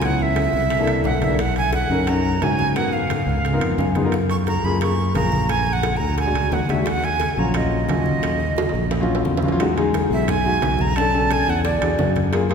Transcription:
Already playing: fingered electric bass C#2
0.02 grand piano B3 C#4 E4, flute F#5, high bongo, high conga, high timbale
0.19 flute E5, high bongo, high conga
0.36 high bongo, high conga, high timbale, low timbale
0.53 fingered electric bass C2, high bongo
0.70 high bongo, high conga, high timbale
0.79 grand piano A#3 D4 E4 A4
0.87 high conga, high timbale
1.04 fingered electric bass B1, flute F#5, high bongo, low bongo, high conga, low timbale
1.21 grand piano A#3 D4 E4 A4, flute E5, high bongo, high conga, high timbale
1.30 grand piano A#3 D4 E4 A4
1.39 flute F#5, high bongo, high conga, high timbale
1.56 flute G#5, high bongo, high conga, high timbale
1.73 flute F#5, high bongo, high conga, high timbale, low timbale
1.90 fingered electric bass F#2, grand piano C#4 D#4 A#4, high bongo, high conga
2.07 grand piano C#4 D#4 A#4, flute A#5, high bongo, high conga, high timbale
2.25 high conga
2.41 fingered electric bass G#2, grand piano C#4 D#4 F#4, flute G#5, high bongo, low bongo, high conga, high timbale, low timbale
2.59 high bongo, high conga
2.76 grand piano B3 F#4 A#4, flute F#5, high bongo, high timbale
2.93 flute F5, high bongo, high conga
3.10 high bongo, high conga, high timbale, low timbale
3.26 fingered electric bass C#2, high bongo
3.45 high bongo, high conga, high timbale
3.52 grand piano B3 D#4 F4 A#4
3.61 fingered electric bass F2, high conga, high timbale
3.78 fingered electric bass F#2, grand piano G#5, high bongo, low bongo, high conga, low timbale
3.95 grand piano B3 D#4 F4 G#4, high bongo, high conga, high timbale
4.05 grand piano B3 D#4 F4 A#4
4.12 high bongo, high conga, high timbale
4.30 flute C#6, high bongo, high conga, high timbale
4.47 flute A#5, high bongo, high conga, high timbale, low timbale
4.63 fingered electric bass F#2, grand piano A#3 F4 G#4, flute B5, high bongo, high conga
4.80 grand piano A#3 F4 G#4, flute C#6, high bongo, high conga, high timbale
4.98 high conga
5.15 fingered electric bass A#1, grand piano A#3 F4 G#4, flute A#5, high bongo, low bongo, high conga, high timbale, low timbale
5.32 high bongo, high conga
5.49 flute G#5, high bongo, high conga, high timbale
5.66 high bongo, high conga
5.73 flute F#5
5.83 high bongo, high conga, high timbale, low timbale
5.97 fingered electric bass D2, flute A#5
6.01 high bongo
6.18 flute G#5, high bongo, high conga, high timbale
6.26 grand piano G#3 D4 F#4
6.34 fingered electric bass C#2, high conga, high timbale
6.51 fingered electric bass D#2, flute F#5, high bongo, low bongo, high conga, low timbale
6.68 grand piano G#3 D4 F#4, flute E5, high bongo, high conga, high timbale
6.77 grand piano G#3 D4 F#4
6.86 flute F#5, high bongo, high conga, high timbale
7.03 flute G#5, high bongo, high conga, high timbale
7.20 high bongo, high conga, high timbale, low timbale
7.36 fingered electric bass A#1, grand piano F#3 C#4 F4, flute A#5, high bongo, high conga
7.54 grand piano F#3 C#4 F4, flute D#5, high bongo, high conga, high timbale
7.72 high conga
7.88 fingered electric bass D#2, grand piano F#3 C#4 F4, high bongo, low bongo, high conga, high timbale, low timbale
8.06 high bongo, high conga
8.22 high bongo, high conga, high timbale
8.40 high bongo, high conga
8.57 high bongo, high conga, high timbale
8.69 high timbale
8.74 fingered electric bass A#1, high bongo
8.91 high bongo, high conga, low timbale
9.00 grand piano F#3 C#4 F4, low timbale
9.08 high conga
9.15 low timbale
9.25 fingered electric bass E2, high bongo, low bongo, high conga
9.37 low timbale
9.42 grand piano F#3 C#4 F4, high bongo, high conga
9.48 grand piano F#3 C#4 F4, low timbale
9.59 grand piano G#3 D#4 F#4, high bongo, high conga, high timbale
9.76 grand piano G#3 D#4 G#4, high bongo, high conga, high timbale
9.94 high bongo, high conga, high timbale, low timbale
10.11 fingered electric bass B1, flute E5, high bongo, high conga
10.28 flute G#5, high bongo, high conga, low conga, high timbale
10.45 grand piano G#3 D#4 F#4, high conga, low conga
10.62 fingered electric bass B1, high bongo, low bongo, high conga, high timbale, low timbale
10.79 flute A#5, high bongo, high conga
10.96 grand piano C#4 D4 A4, flute A5, high bongo, high conga, high timbale
11.13 grand piano C#4 D4 A4, high bongo, high conga
11.31 flute G#5, high bongo, high conga, high timbale, low timbale
11.48 fingered electric bass E2, flute F#5, high bongo
11.65 flute D5, high bongo, high conga, high timbale
11.81 fingered electric bass E2, grand piano D4 F#4 G#4, high conga, high timbale
11.99 fingered electric bass F#2, high bongo, low bongo, high conga, low timbale
12.15 high bongo, high conga, high timbale
12.32 grand piano A#3 F4 G#4, high bongo, high conga, high timbale
12.49 grand piano A#3 F4 G#4, high bongo, high conga, high timbale

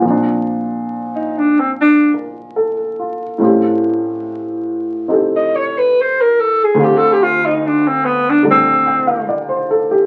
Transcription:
0.00 grand piano A#2 F3
0.05 grand piano A#3 C4
0.10 grand piano D4
1.16 alto saxophone D#4
1.38 alto saxophone D4
1.60 alto saxophone C4
1.81 alto saxophone D4
2.14 grand piano A#4
2.56 grand piano A4
2.99 grand piano F4
3.38 grand piano A2 A3 C4 C#4
3.42 grand piano F4 G4
5.08 grand piano C4 D#4 G4 A4
5.36 alto saxophone D#5
5.56 alto saxophone C#5
5.78 alto saxophone B4
6.01 alto saxophone C5
6.21 alto saxophone A#4
6.41 alto saxophone A4
6.64 alto saxophone G#4
6.75 grand piano D2 D3 A3 C4
6.79 grand piano F4
6.84 alto saxophone G4
6.97 alto saxophone A4
7.13 alto saxophone G4
7.23 alto saxophone F4
7.46 alto saxophone D#4
7.67 alto saxophone D4
7.88 alto saxophone C4
8.05 alto saxophone B3
8.30 alto saxophone D4
8.43 grand piano D3 G3 A3 D4
8.50 alto saxophone C4
8.86 grand piano G5
9.07 grand piano F5
9.29 grand piano D5
9.49 grand piano C5
9.71 grand piano A4
9.91 grand piano G4

